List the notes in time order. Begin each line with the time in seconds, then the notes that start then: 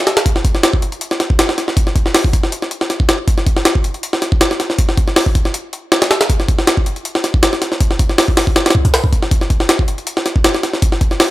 0.07 snare, closed hi-hat
0.17 snare, closed hi-hat
0.26 kick, closed hi-hat
0.36 snare
0.45 kick, closed hi-hat
0.55 snare
0.63 snare, closed hi-hat
0.73 kick
0.82 closed hi-hat
0.92 closed hi-hat
1.01 closed hi-hat
1.11 snare
1.20 snare, closed hi-hat
1.30 kick
1.39 snare, closed hi-hat
1.49 snare
1.58 snare, closed hi-hat
1.68 snare
1.77 kick, closed hi-hat
1.87 snare
1.96 kick, closed hi-hat
2.06 snare
2.15 snare, open hi-hat
2.24 kick
2.33 kick, closed hi-hat
2.43 snare
2.52 closed hi-hat
2.62 snare
2.71 closed hi-hat
2.81 snare
2.90 snare, closed hi-hat
3.00 kick
3.09 snare, closed hi-hat
3.28 kick, closed hi-hat
3.38 snare
3.46 kick, closed hi-hat
3.56 snare
3.65 snare, closed hi-hat
3.75 kick
3.84 closed hi-hat
3.94 closed hi-hat
4.03 closed hi-hat
4.13 snare
4.22 snare, closed hi-hat
4.32 kick
4.41 snare, closed hi-hat
4.51 snare
4.60 snare, closed hi-hat
4.70 snare
4.79 kick, closed hi-hat
4.89 snare
4.97 kick, closed hi-hat
5.08 snare
5.16 snare, open hi-hat
5.26 kick
5.35 kick, closed hi-hat
5.45 snare
5.54 closed hi-hat
5.73 closed hi-hat
5.92 snare, closed hi-hat
6.02 snare, closed hi-hat
6.11 snare, closed hi-hat
6.21 snare, closed hi-hat
6.30 kick, closed hi-hat
6.40 snare
6.48 kick, closed hi-hat
6.59 snare
6.67 snare, closed hi-hat
6.77 kick
6.86 closed hi-hat
6.96 closed hi-hat
7.05 closed hi-hat
7.15 snare
7.24 snare, closed hi-hat
7.34 kick
7.43 snare, closed hi-hat
7.53 snare
7.62 snare, closed hi-hat
7.72 snare
7.80 kick, closed hi-hat
7.91 snare
7.99 kick, closed hi-hat
8.09 snare
8.18 snare, open hi-hat
8.28 kick
8.37 snare, open hi-hat
8.47 kick
8.56 snare, closed hi-hat
8.66 snare, closed hi-hat
8.70 snare, closed hi-hat
8.75 kick
8.85 kick, closed hi-hat
8.94 snare, open hi-hat
9.04 kick
9.13 kick, closed hi-hat
9.23 snare
9.31 kick, closed hi-hat
9.41 snare
9.50 kick, closed hi-hat
9.60 snare
9.69 snare, closed hi-hat
9.79 kick
9.88 closed hi-hat
9.98 closed hi-hat
10.07 closed hi-hat
10.17 snare
10.26 snare, closed hi-hat
10.36 kick
10.44 snare, closed hi-hat
10.55 snare
10.63 snare, closed hi-hat
10.73 snare
10.82 kick, closed hi-hat
10.92 snare
11.01 kick, closed hi-hat
11.11 snare
11.20 snare, open hi-hat